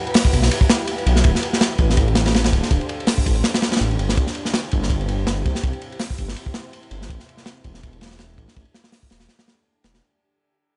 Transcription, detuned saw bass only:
0, 0, Header, 1, 2, 480
1, 0, Start_track
1, 0, Tempo, 365854
1, 1632, Time_signature, 4, 2, 24, 8
1, 14128, End_track
2, 0, Start_track
2, 0, Title_t, "Detuned saw bass"
2, 0, Program_c, 0, 39
2, 439, Note_on_c, 0, 35, 90
2, 654, Note_off_c, 0, 35, 0
2, 1396, Note_on_c, 0, 35, 102
2, 1612, Note_off_c, 0, 35, 0
2, 1638, Note_on_c, 0, 26, 100
2, 1753, Note_off_c, 0, 26, 0
2, 2345, Note_on_c, 0, 33, 88
2, 2567, Note_off_c, 0, 33, 0
2, 2588, Note_on_c, 0, 33, 91
2, 3293, Note_off_c, 0, 33, 0
2, 3314, Note_on_c, 0, 26, 102
2, 3431, Note_off_c, 0, 26, 0
2, 3555, Note_on_c, 0, 26, 101
2, 3671, Note_off_c, 0, 26, 0
2, 4279, Note_on_c, 0, 33, 89
2, 4494, Note_off_c, 0, 33, 0
2, 4995, Note_on_c, 0, 33, 86
2, 5212, Note_off_c, 0, 33, 0
2, 5236, Note_on_c, 0, 31, 80
2, 5369, Note_on_c, 0, 33, 101
2, 5389, Note_off_c, 0, 31, 0
2, 5464, Note_off_c, 0, 33, 0
2, 5477, Note_on_c, 0, 36, 98
2, 5592, Note_off_c, 0, 36, 0
2, 6207, Note_on_c, 0, 31, 91
2, 6418, Note_off_c, 0, 31, 0
2, 6427, Note_on_c, 0, 31, 86
2, 7132, Note_off_c, 0, 31, 0
2, 7158, Note_on_c, 0, 36, 98
2, 7273, Note_off_c, 0, 36, 0
2, 7394, Note_on_c, 0, 36, 96
2, 7511, Note_off_c, 0, 36, 0
2, 8118, Note_on_c, 0, 31, 90
2, 8333, Note_off_c, 0, 31, 0
2, 9068, Note_on_c, 0, 31, 95
2, 9288, Note_off_c, 0, 31, 0
2, 9309, Note_on_c, 0, 33, 99
2, 9428, Note_off_c, 0, 33, 0
2, 10033, Note_on_c, 0, 28, 89
2, 10251, Note_off_c, 0, 28, 0
2, 10278, Note_on_c, 0, 28, 88
2, 10977, Note_off_c, 0, 28, 0
2, 10995, Note_on_c, 0, 33, 98
2, 11111, Note_off_c, 0, 33, 0
2, 11239, Note_on_c, 0, 33, 97
2, 11353, Note_off_c, 0, 33, 0
2, 11958, Note_on_c, 0, 28, 87
2, 12173, Note_off_c, 0, 28, 0
2, 12915, Note_on_c, 0, 28, 97
2, 13132, Note_off_c, 0, 28, 0
2, 14128, End_track
0, 0, End_of_file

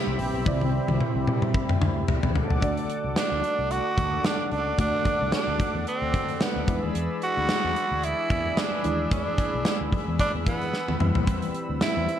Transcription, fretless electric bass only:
0, 0, Header, 1, 2, 480
1, 0, Start_track
1, 0, Tempo, 540541
1, 411, Time_signature, 4, 2, 24, 8
1, 10829, End_track
2, 0, Start_track
2, 0, Title_t, "Fretless electric bass"
2, 0, Program_c, 0, 35
2, 59, Note_on_c, 0, 36, 90
2, 142, Note_off_c, 0, 36, 0
2, 170, Note_on_c, 0, 34, 103
2, 269, Note_off_c, 0, 34, 0
2, 299, Note_on_c, 0, 35, 91
2, 381, Note_off_c, 0, 35, 0
2, 411, Note_on_c, 0, 36, 99
2, 690, Note_off_c, 0, 36, 0
2, 782, Note_on_c, 0, 36, 89
2, 863, Note_off_c, 0, 36, 0
2, 1019, Note_on_c, 0, 36, 87
2, 1102, Note_off_c, 0, 36, 0
2, 1129, Note_on_c, 0, 48, 91
2, 1310, Note_off_c, 0, 48, 0
2, 1608, Note_on_c, 0, 38, 92
2, 1789, Note_off_c, 0, 38, 0
2, 1981, Note_on_c, 0, 40, 88
2, 2063, Note_off_c, 0, 40, 0
2, 2088, Note_on_c, 0, 38, 99
2, 2188, Note_off_c, 0, 38, 0
2, 2220, Note_on_c, 0, 37, 85
2, 2302, Note_off_c, 0, 37, 0
2, 2328, Note_on_c, 0, 38, 90
2, 2428, Note_off_c, 0, 38, 0
2, 2699, Note_on_c, 0, 36, 77
2, 2781, Note_off_c, 0, 36, 0
2, 2941, Note_on_c, 0, 38, 80
2, 3022, Note_off_c, 0, 38, 0
2, 3180, Note_on_c, 0, 36, 77
2, 3361, Note_off_c, 0, 36, 0
2, 3529, Note_on_c, 0, 38, 84
2, 3710, Note_off_c, 0, 38, 0
2, 4009, Note_on_c, 0, 37, 92
2, 4190, Note_off_c, 0, 37, 0
2, 4248, Note_on_c, 0, 38, 92
2, 4348, Note_off_c, 0, 38, 0
2, 4623, Note_on_c, 0, 36, 78
2, 4704, Note_off_c, 0, 36, 0
2, 4858, Note_on_c, 0, 38, 80
2, 4941, Note_off_c, 0, 38, 0
2, 5102, Note_on_c, 0, 40, 82
2, 5183, Note_off_c, 0, 40, 0
2, 5341, Note_on_c, 0, 38, 96
2, 5422, Note_off_c, 0, 38, 0
2, 5450, Note_on_c, 0, 50, 101
2, 5630, Note_off_c, 0, 50, 0
2, 5822, Note_on_c, 0, 38, 88
2, 5903, Note_off_c, 0, 38, 0
2, 5930, Note_on_c, 0, 40, 93
2, 6029, Note_off_c, 0, 40, 0
2, 6064, Note_on_c, 0, 39, 81
2, 6145, Note_off_c, 0, 39, 0
2, 6174, Note_on_c, 0, 40, 106
2, 6272, Note_off_c, 0, 40, 0
2, 6545, Note_on_c, 0, 38, 87
2, 6625, Note_off_c, 0, 38, 0
2, 6784, Note_on_c, 0, 40, 83
2, 6865, Note_off_c, 0, 40, 0
2, 7024, Note_on_c, 0, 38, 87
2, 7204, Note_off_c, 0, 38, 0
2, 7372, Note_on_c, 0, 40, 75
2, 7551, Note_off_c, 0, 40, 0
2, 7853, Note_on_c, 0, 39, 82
2, 8032, Note_off_c, 0, 39, 0
2, 8092, Note_on_c, 0, 40, 98
2, 8191, Note_off_c, 0, 40, 0
2, 8466, Note_on_c, 0, 35, 83
2, 8546, Note_off_c, 0, 35, 0
2, 8706, Note_on_c, 0, 38, 79
2, 8786, Note_off_c, 0, 38, 0
2, 8946, Note_on_c, 0, 40, 80
2, 9026, Note_off_c, 0, 40, 0
2, 9185, Note_on_c, 0, 40, 94
2, 9265, Note_off_c, 0, 40, 0
2, 9293, Note_on_c, 0, 52, 94
2, 9472, Note_off_c, 0, 52, 0
2, 9664, Note_on_c, 0, 40, 87
2, 9745, Note_off_c, 0, 40, 0
2, 9770, Note_on_c, 0, 40, 98
2, 9869, Note_off_c, 0, 40, 0
2, 9902, Note_on_c, 0, 39, 76
2, 9984, Note_off_c, 0, 39, 0
2, 10012, Note_on_c, 0, 40, 91
2, 10111, Note_off_c, 0, 40, 0
2, 10383, Note_on_c, 0, 38, 85
2, 10464, Note_off_c, 0, 38, 0
2, 10626, Note_on_c, 0, 40, 78
2, 10706, Note_off_c, 0, 40, 0
2, 10829, End_track
0, 0, End_of_file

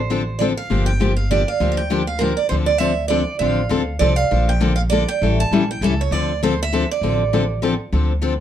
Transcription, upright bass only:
0, 0, Header, 1, 2, 480
1, 0, Start_track
1, 0, Key_signature, -1, "minor"
1, 0, Tempo, 300601
1, 1127, Time_signature, 3, 2, 24, 8
1, 13416, End_track
2, 0, Start_track
2, 0, Title_t, "Upright bass"
2, 0, Program_c, 0, 32
2, 0, Note_on_c, 0, 33, 76
2, 839, Note_off_c, 0, 33, 0
2, 1124, Note_on_c, 0, 31, 81
2, 2280, Note_off_c, 0, 31, 0
2, 2560, Note_on_c, 0, 38, 78
2, 3718, Note_off_c, 0, 38, 0
2, 4012, Note_on_c, 0, 38, 85
2, 5164, Note_off_c, 0, 38, 0
2, 5433, Note_on_c, 0, 33, 73
2, 5825, Note_off_c, 0, 33, 0
2, 5921, Note_on_c, 0, 38, 78
2, 6334, Note_off_c, 0, 38, 0
2, 6392, Note_on_c, 0, 36, 74
2, 6808, Note_off_c, 0, 36, 0
2, 6889, Note_on_c, 0, 34, 85
2, 8042, Note_off_c, 0, 34, 0
2, 8329, Note_on_c, 0, 33, 87
2, 8714, Note_off_c, 0, 33, 0
2, 8802, Note_on_c, 0, 34, 79
2, 9213, Note_off_c, 0, 34, 0
2, 9282, Note_on_c, 0, 37, 83
2, 9693, Note_off_c, 0, 37, 0
2, 9758, Note_on_c, 0, 38, 87
2, 10913, Note_off_c, 0, 38, 0
2, 11200, Note_on_c, 0, 33, 76
2, 12355, Note_off_c, 0, 33, 0
2, 12656, Note_on_c, 0, 38, 86
2, 13416, Note_off_c, 0, 38, 0
2, 13416, End_track
0, 0, End_of_file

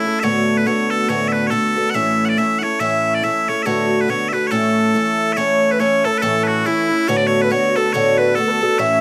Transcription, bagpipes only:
0, 0, Header, 1, 2, 480
1, 0, Start_track
1, 0, Key_signature, 3, "major"
1, 0, Tempo, 428571
1, 249, Time_signature, 2, 2, 24, 8
1, 10089, End_track
2, 0, Start_track
2, 0, Title_t, "Bagpipes"
2, 0, Program_c, 0, 109
2, 0, Note_on_c, 0, 64, 60
2, 221, Note_off_c, 0, 64, 0
2, 221, Note_on_c, 0, 76, 93
2, 265, Note_off_c, 0, 76, 0
2, 265, Note_on_c, 0, 73, 93
2, 639, Note_off_c, 0, 73, 0
2, 639, Note_on_c, 0, 71, 74
2, 745, Note_off_c, 0, 71, 0
2, 745, Note_on_c, 0, 73, 74
2, 1011, Note_off_c, 0, 73, 0
2, 1011, Note_on_c, 0, 69, 69
2, 1218, Note_off_c, 0, 69, 0
2, 1218, Note_on_c, 0, 73, 88
2, 1435, Note_off_c, 0, 73, 0
2, 1435, Note_on_c, 0, 76, 73
2, 1481, Note_off_c, 0, 76, 0
2, 1481, Note_on_c, 0, 71, 73
2, 1644, Note_off_c, 0, 71, 0
2, 1644, Note_on_c, 0, 73, 67
2, 1682, Note_off_c, 0, 73, 0
2, 1682, Note_on_c, 0, 69, 67
2, 2130, Note_off_c, 0, 69, 0
2, 2130, Note_on_c, 0, 78, 95
2, 2180, Note_off_c, 0, 78, 0
2, 2180, Note_on_c, 0, 76, 95
2, 2521, Note_off_c, 0, 76, 0
2, 2521, Note_on_c, 0, 78, 72
2, 2562, Note_off_c, 0, 78, 0
2, 2562, Note_on_c, 0, 74, 72
2, 2662, Note_off_c, 0, 74, 0
2, 2662, Note_on_c, 0, 76, 80
2, 2897, Note_off_c, 0, 76, 0
2, 2897, Note_on_c, 0, 78, 77
2, 2946, Note_off_c, 0, 78, 0
2, 2946, Note_on_c, 0, 73, 77
2, 3135, Note_off_c, 0, 73, 0
2, 3135, Note_on_c, 0, 76, 87
2, 3520, Note_off_c, 0, 76, 0
2, 3520, Note_on_c, 0, 74, 75
2, 3623, Note_off_c, 0, 74, 0
2, 3623, Note_on_c, 0, 76, 80
2, 3904, Note_off_c, 0, 76, 0
2, 3904, Note_on_c, 0, 73, 75
2, 4062, Note_off_c, 0, 73, 0
2, 4062, Note_on_c, 0, 76, 70
2, 4099, Note_off_c, 0, 76, 0
2, 4099, Note_on_c, 0, 73, 70
2, 4485, Note_off_c, 0, 73, 0
2, 4485, Note_on_c, 0, 71, 67
2, 4589, Note_off_c, 0, 71, 0
2, 4589, Note_on_c, 0, 73, 76
2, 4800, Note_off_c, 0, 73, 0
2, 4800, Note_on_c, 0, 76, 67
2, 4851, Note_off_c, 0, 76, 0
2, 4851, Note_on_c, 0, 71, 67
2, 5004, Note_off_c, 0, 71, 0
2, 5004, Note_on_c, 0, 73, 67
2, 5051, Note_off_c, 0, 73, 0
2, 5051, Note_on_c, 0, 69, 67
2, 5968, Note_off_c, 0, 69, 0
2, 5968, Note_on_c, 0, 76, 83
2, 6014, Note_off_c, 0, 76, 0
2, 6014, Note_on_c, 0, 73, 83
2, 6394, Note_off_c, 0, 73, 0
2, 6394, Note_on_c, 0, 71, 60
2, 6491, Note_off_c, 0, 71, 0
2, 6491, Note_on_c, 0, 73, 81
2, 6770, Note_off_c, 0, 73, 0
2, 6770, Note_on_c, 0, 69, 73
2, 6923, Note_off_c, 0, 69, 0
2, 6923, Note_on_c, 0, 71, 84
2, 6966, Note_off_c, 0, 71, 0
2, 6966, Note_on_c, 0, 69, 84
2, 7208, Note_off_c, 0, 69, 0
2, 7208, Note_on_c, 0, 71, 73
2, 7253, Note_off_c, 0, 71, 0
2, 7253, Note_on_c, 0, 66, 73
2, 7461, Note_off_c, 0, 66, 0
2, 7461, Note_on_c, 0, 64, 70
2, 7931, Note_off_c, 0, 64, 0
2, 7931, Note_on_c, 0, 73, 81
2, 8031, Note_off_c, 0, 73, 0
2, 8031, Note_on_c, 0, 74, 73
2, 8141, Note_off_c, 0, 74, 0
2, 8141, Note_on_c, 0, 73, 83
2, 8303, Note_off_c, 0, 73, 0
2, 8303, Note_on_c, 0, 71, 75
2, 8416, Note_off_c, 0, 71, 0
2, 8416, Note_on_c, 0, 73, 69
2, 8689, Note_off_c, 0, 73, 0
2, 8689, Note_on_c, 0, 69, 65
2, 8879, Note_off_c, 0, 69, 0
2, 8879, Note_on_c, 0, 73, 83
2, 9154, Note_off_c, 0, 73, 0
2, 9154, Note_on_c, 0, 71, 69
2, 9355, Note_off_c, 0, 71, 0
2, 9355, Note_on_c, 0, 69, 89
2, 9841, Note_off_c, 0, 69, 0
2, 9841, Note_on_c, 0, 76, 85
2, 10089, Note_off_c, 0, 76, 0
2, 10089, End_track
0, 0, End_of_file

